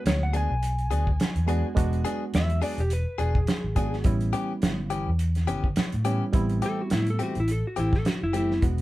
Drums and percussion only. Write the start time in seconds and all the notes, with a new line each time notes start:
0.06 snare, closed hi-hat
0.34 closed hi-hat
0.63 closed hi-hat
0.78 closed hi-hat
0.91 closed hi-hat
1.07 kick
1.20 snare, closed hi-hat
1.36 closed hi-hat
1.48 closed hi-hat
1.77 kick, closed hi-hat
1.93 closed hi-hat
2.05 closed hi-hat
2.34 snare, closed hi-hat
2.50 closed hi-hat
2.62 open hi-hat
2.78 closed hi-hat
2.90 closed hi-hat
3.19 closed hi-hat
3.35 kick
3.47 snare, closed hi-hat
3.76 kick, closed hi-hat
3.93 snare
4.04 kick, closed hi-hat
4.21 closed hi-hat
4.33 closed hi-hat
4.62 snare, closed hi-hat
4.90 closed hi-hat
5.19 closed hi-hat
5.35 snare, closed hi-hat
5.48 closed hi-hat
5.64 kick
5.76 snare, closed hi-hat
5.92 closed hi-hat
6.05 closed hi-hat
6.33 kick, closed hi-hat
6.49 closed hi-hat
6.62 closed hi-hat
6.90 snare, closed hi-hat
7.07 closed hi-hat
7.19 closed hi-hat
7.35 closed hi-hat
7.48 closed hi-hat
7.77 closed hi-hat
7.93 kick, snare
8.05 snare, closed hi-hat
8.34 closed hi-hat
8.51 snare
8.62 kick, closed hi-hat
8.78 closed hi-hat